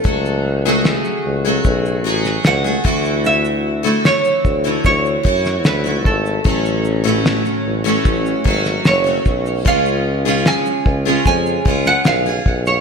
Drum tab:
SH |xx-xxx-xxxxxxxxx|xx-xxxxxxxxxxx-x|xxxxxx-xxx-xxxxx|xx-xxx-xxx-xxx-x|
SD |----o------oo---|----o------oo---|----o------oo---|----o------oo---|
BD |o-------o-----o-|------o-o-o---o-|o-------o-o---o-|o-----o-o-o---o-|